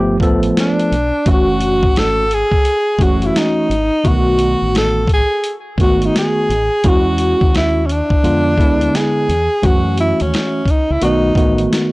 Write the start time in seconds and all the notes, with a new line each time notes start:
Already playing: G1 F3 A3 B3 G4
0.20 A1 F3 A3 B3 A4, kick, closed hi-hat
0.43 closed hi-hat
0.57 D4, snare, closed hi-hat
0.79 closed hi-hat
0.91 B1, closed hi-hat
1.26 F#1 E3 A3 C#4 F#4, kick, closed hi-hat
1.60 closed hi-hat
1.82 G#1, kick
1.96 A4, snare, closed hi-hat
2.31 G#4, closed hi-hat
2.52 kick
2.65 closed hi-hat
2.98 F#1 E3 A3 C#4 F#4, kick, closed hi-hat
3.03 F#4
3.22 closed hi-hat
3.26 E4
3.36 D#4, snare, closed hi-hat
3.69 G#1, closed hi-hat
4.04 B1 D3 A3 B3 F#4, kick, closed hi-hat
4.08 D#3 F#4
4.39 closed hi-hat
4.62 A1
4.75 A4, snare, closed hi-hat
5.08 kick, closed hi-hat
5.13 G#4
5.44 closed hi-hat
5.78 G#1 D#3 A3 B3 F#4, kick, closed hi-hat
5.83 F#4
6.02 D#4, closed hi-hat
6.16 G#4, snare, closed hi-hat
6.49 A1, closed hi-hat
6.84 E2 G#3 C#4 E4 F#4, kick, closed hi-hat
6.88 F#4
7.18 closed hi-hat
7.41 D#2, kick
7.55 E4, snare, closed hi-hat
7.86 C#4, closed hi-hat
7.92 D4
8.10 kick
8.23 F2 D3 G#3 B3 F4, closed hi-hat
8.57 D2 D3 G#3 B3 E4, kick, closed hi-hat
8.81 closed hi-hat
8.95 G#4, snare, closed hi-hat
9.29 E2, closed hi-hat
9.62 F#2 E3 A3 C#4 F#4, kick, closed hi-hat
9.98 E4, closed hi-hat
10.20 D#2 C#4, closed hi-hat
10.34 snare, closed hi-hat
10.65 kick, closed hi-hat
10.71 D#4
10.90 C#2 E4
11.01 B1 D#3 A3 B3 D#4 F#4, closed hi-hat
11.35 A1 D#3 A3 B3 F#4, kick, closed hi-hat
11.58 closed hi-hat
11.73 snare, closed hi-hat